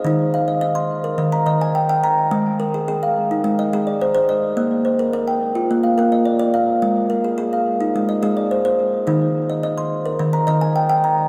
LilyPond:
<<
  \new Staff \with { instrumentName = "Kalimba" } { \time 4/4 \key aes \lydian \tempo 4 = 106 << { ees''16 r16 f''16 ees''8 c'''8. r16 bes''8 aes''16 g''8 bes''8~ | bes''16 r16 bes'16 aes'8 f''8. r16 ees''8 d''16 c''8 ees''8~ | ees''16 r16 c''16 bes'8 g''8. r16 f''8 ees''16 d''8 f''8~ | f''16 r16 bes'16 aes'8 f''8. r16 ees''8 d''16 c''8. r16 |
r8. ees''8 c'''8. r16 bes''8 aes''16 g''8 bes''8 | } \\ { ees'8 r8 ees''8 r16 bes'8 r16 ees''8 r16 g''8 r16 | r4 aes'8 r16 ees'8 r16 aes'8 r16 c''8 r16 | r4 bes'8 r16 f'8 r16 bes'8 r16 d''8 r16 | aes8 r8 aes'8 r16 ees'8 r16 aes'8 r16 c''8 r16 |
ees'8 r8 ees''8 r16 bes'8 r16 ees''8 r16 g''8 r16 | } >> }
  \new Staff \with { instrumentName = "Kalimba" } { \clef bass \time 4/4 \key aes \lydian ees2 ees8 ees8 r4 | aes2 aes8 aes8 r4 | bes2 bes8 bes8 r4 | r2 aes8 aes8 r4 |
ees2 ees8 ees8 r4 | }
>>